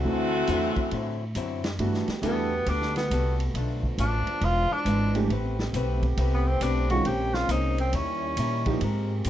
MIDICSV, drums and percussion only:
0, 0, Header, 1, 2, 480
1, 0, Start_track
1, 0, Tempo, 439239
1, 36, Time_signature, 4, 2, 24, 8
1, 10161, End_track
2, 0, Start_track
2, 0, Title_t, "Drums"
2, 518, Note_on_c, 9, 44, 68
2, 518, Note_on_c, 9, 51, 68
2, 627, Note_off_c, 9, 44, 0
2, 627, Note_off_c, 9, 51, 0
2, 833, Note_on_c, 9, 51, 44
2, 837, Note_on_c, 9, 36, 61
2, 942, Note_off_c, 9, 51, 0
2, 946, Note_off_c, 9, 36, 0
2, 997, Note_on_c, 9, 51, 57
2, 1106, Note_off_c, 9, 51, 0
2, 1474, Note_on_c, 9, 44, 58
2, 1474, Note_on_c, 9, 51, 66
2, 1583, Note_off_c, 9, 44, 0
2, 1583, Note_off_c, 9, 51, 0
2, 1791, Note_on_c, 9, 51, 52
2, 1794, Note_on_c, 9, 38, 69
2, 1900, Note_off_c, 9, 51, 0
2, 1903, Note_off_c, 9, 38, 0
2, 1954, Note_on_c, 9, 51, 63
2, 2064, Note_off_c, 9, 51, 0
2, 2119, Note_on_c, 9, 38, 32
2, 2228, Note_off_c, 9, 38, 0
2, 2269, Note_on_c, 9, 51, 42
2, 2277, Note_on_c, 9, 38, 46
2, 2378, Note_off_c, 9, 51, 0
2, 2386, Note_off_c, 9, 38, 0
2, 2435, Note_on_c, 9, 44, 58
2, 2435, Note_on_c, 9, 51, 75
2, 2544, Note_off_c, 9, 44, 0
2, 2544, Note_off_c, 9, 51, 0
2, 2911, Note_on_c, 9, 51, 69
2, 3020, Note_off_c, 9, 51, 0
2, 3074, Note_on_c, 9, 38, 28
2, 3184, Note_off_c, 9, 38, 0
2, 3232, Note_on_c, 9, 51, 48
2, 3245, Note_on_c, 9, 38, 48
2, 3341, Note_off_c, 9, 51, 0
2, 3354, Note_off_c, 9, 38, 0
2, 3401, Note_on_c, 9, 44, 57
2, 3401, Note_on_c, 9, 51, 72
2, 3510, Note_off_c, 9, 44, 0
2, 3510, Note_off_c, 9, 51, 0
2, 3713, Note_on_c, 9, 51, 51
2, 3823, Note_off_c, 9, 51, 0
2, 3876, Note_on_c, 9, 51, 70
2, 3986, Note_off_c, 9, 51, 0
2, 4188, Note_on_c, 9, 36, 46
2, 4298, Note_off_c, 9, 36, 0
2, 4353, Note_on_c, 9, 44, 58
2, 4353, Note_on_c, 9, 51, 74
2, 4462, Note_off_c, 9, 44, 0
2, 4462, Note_off_c, 9, 51, 0
2, 4665, Note_on_c, 9, 51, 49
2, 4774, Note_off_c, 9, 51, 0
2, 4823, Note_on_c, 9, 51, 63
2, 4932, Note_off_c, 9, 51, 0
2, 5307, Note_on_c, 9, 44, 57
2, 5307, Note_on_c, 9, 51, 68
2, 5416, Note_off_c, 9, 44, 0
2, 5416, Note_off_c, 9, 51, 0
2, 5625, Note_on_c, 9, 51, 50
2, 5735, Note_off_c, 9, 51, 0
2, 5793, Note_on_c, 9, 51, 54
2, 5903, Note_off_c, 9, 51, 0
2, 6110, Note_on_c, 9, 38, 55
2, 6220, Note_off_c, 9, 38, 0
2, 6270, Note_on_c, 9, 44, 66
2, 6270, Note_on_c, 9, 51, 69
2, 6380, Note_off_c, 9, 44, 0
2, 6380, Note_off_c, 9, 51, 0
2, 6585, Note_on_c, 9, 36, 55
2, 6585, Note_on_c, 9, 51, 43
2, 6694, Note_off_c, 9, 36, 0
2, 6695, Note_off_c, 9, 51, 0
2, 6747, Note_on_c, 9, 51, 72
2, 6856, Note_off_c, 9, 51, 0
2, 7221, Note_on_c, 9, 44, 58
2, 7221, Note_on_c, 9, 51, 73
2, 7330, Note_off_c, 9, 44, 0
2, 7330, Note_off_c, 9, 51, 0
2, 7537, Note_on_c, 9, 51, 53
2, 7647, Note_off_c, 9, 51, 0
2, 7703, Note_on_c, 9, 51, 65
2, 7813, Note_off_c, 9, 51, 0
2, 8019, Note_on_c, 9, 38, 48
2, 8128, Note_off_c, 9, 38, 0
2, 8184, Note_on_c, 9, 44, 62
2, 8184, Note_on_c, 9, 51, 71
2, 8293, Note_off_c, 9, 44, 0
2, 8293, Note_off_c, 9, 51, 0
2, 8504, Note_on_c, 9, 51, 48
2, 8614, Note_off_c, 9, 51, 0
2, 8663, Note_on_c, 9, 51, 69
2, 8772, Note_off_c, 9, 51, 0
2, 9144, Note_on_c, 9, 44, 65
2, 9144, Note_on_c, 9, 51, 76
2, 9253, Note_off_c, 9, 44, 0
2, 9253, Note_off_c, 9, 51, 0
2, 9460, Note_on_c, 9, 51, 55
2, 9466, Note_on_c, 9, 36, 61
2, 9569, Note_off_c, 9, 51, 0
2, 9576, Note_off_c, 9, 36, 0
2, 9625, Note_on_c, 9, 51, 63
2, 9734, Note_off_c, 9, 51, 0
2, 10102, Note_on_c, 9, 44, 57
2, 10102, Note_on_c, 9, 51, 72
2, 10161, Note_off_c, 9, 44, 0
2, 10161, Note_off_c, 9, 51, 0
2, 10161, End_track
0, 0, End_of_file